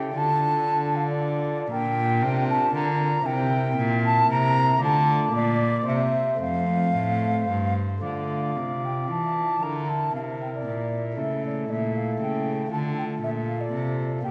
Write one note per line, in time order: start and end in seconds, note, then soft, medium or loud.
0.00 0.13 C#3 medium
0.00 0.11 E4 medium
0.00 0.11 G4 soft
0.00 0.12 A4 soft
0.00 0.19 G5 loud
0.13 1.65 D4 soft
0.13 1.66 F4 medium
0.13 1.67 A4 medium
0.17 1.68 D3 medium
0.17 0.97 A5 loud
0.95 1.08 F5 medium
1.09 1.58 D5 medium
1.67 3.19 D4 medium
1.67 3.19 F4 medium
1.67 3.20 A#4 medium
1.71 2.24 A#2 medium
1.71 2.18 A#2 medium
1.71 2.44 G5 loud
2.23 2.74 C3 medium
2.23 2.70 C3 medium
2.49 2.74 A5 loud
2.74 3.24 D3 medium
2.74 3.21 D3 medium
2.74 3.27 A#5 loud
3.21 3.76 C3 medium
3.21 4.74 C4 medium
3.21 4.75 E4 medium
3.21 4.76 A#4 medium
3.26 3.73 C3 medium
3.26 4.03 G5 loud
3.77 4.27 A#2 medium
3.77 4.25 A#2 medium
4.05 4.29 A5 loud
4.29 4.79 C3 medium
4.29 4.77 C3 medium
4.29 4.80 A#5 loud
4.76 5.29 A3 medium
4.76 5.29 F4 medium
4.76 5.30 D5 medium
4.81 5.32 D3 medium
4.81 5.29 D3 medium
4.81 5.33 A5 loud
5.29 5.85 A#2 medium
5.29 5.82 A#3 medium
5.29 5.83 F4 medium
5.29 5.84 D5 medium
5.34 5.82 A#2 medium
5.34 5.86 D5 loud
5.83 6.36 C3 medium
5.83 6.35 C4 medium
5.83 6.37 C5 medium
5.83 6.40 E5 loud
5.87 6.40 C3 medium
6.36 7.44 A3 soft
6.36 7.44 C4 medium
6.36 7.99 C5 soft
6.40 6.91 F2 medium
6.40 6.94 F2 medium
6.40 7.74 F5 loud
6.95 7.48 A2 medium
6.95 7.46 A2 medium
7.49 8.00 G2 medium
7.49 8.03 G2 medium
7.99 8.52 A3 soft
7.99 9.56 F4 soft
7.99 9.57 D5 soft
8.04 8.53 D3 soft
8.04 8.58 D3 medium
8.04 8.86 F5 medium
8.57 9.11 C3 soft
8.57 9.05 C3 soft
8.84 9.10 G5 medium
9.09 9.61 E3 medium
9.09 9.58 E3 soft
9.09 9.64 A5 medium
9.59 10.13 D3 medium
9.59 10.10 D3 soft
9.59 11.12 E4 soft
9.59 11.13 A#4 soft
9.59 9.90 A#5 medium
9.89 10.14 A5 medium
10.14 10.65 C3 medium
10.14 10.62 C3 soft
10.14 10.21 F5 medium
10.41 10.53 G5 medium
10.54 11.04 D5 medium
10.66 11.19 A#2 medium
10.66 11.14 A#2 soft
11.13 12.65 A3 soft
11.13 12.66 E4 soft
11.13 12.67 A4 soft
11.17 11.69 C#3 medium
11.17 11.65 C#3 soft
11.17 11.42 E5 medium
11.46 11.71 D5 medium
11.70 12.17 A#2 soft
11.70 12.20 A#2 medium
11.70 11.95 E5 medium
11.95 12.20 F5 medium
12.21 12.70 C#3 medium
12.21 12.68 C#3 medium
12.21 12.71 G5 medium
12.67 13.21 D3 medium
12.67 13.19 A3 soft
12.67 14.19 F4 soft
12.67 14.20 A4 soft
12.72 13.18 D3 soft
12.72 12.78 A5 medium
12.98 13.04 G5 medium
13.21 13.69 A#2 medium
13.21 13.72 A#2 medium
13.21 13.29 E5 medium
13.47 13.62 F5 medium
13.60 14.12 D5 medium
13.73 14.24 C3 medium
13.73 14.21 C3 medium
14.20 14.31 A#3 soft
14.20 14.31 F4 soft
14.20 14.31 G4 soft
14.20 14.30 G5 medium
14.24 14.31 A#2 medium